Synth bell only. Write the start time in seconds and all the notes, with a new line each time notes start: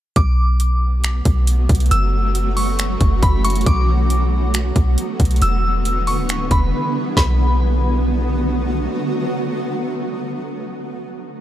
0.17 D6
1.91 E6
2.57 C#6
3.23 B5
3.44 C#6
3.67 D6
5.42 E6
6.07 C#6
6.52 B5
7.17 B5